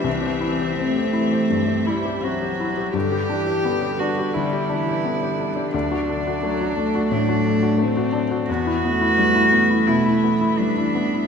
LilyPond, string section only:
\new Staff \with { instrumentName = "String section" } { \time 4/4 \key g \major \tempo 4 = 86 << { e''1 | d''1~ | d''1 | e''1 | } \\ { <e c''>1 | <g b'>1 | <fis a'>1 | <e b'>1 | } >> }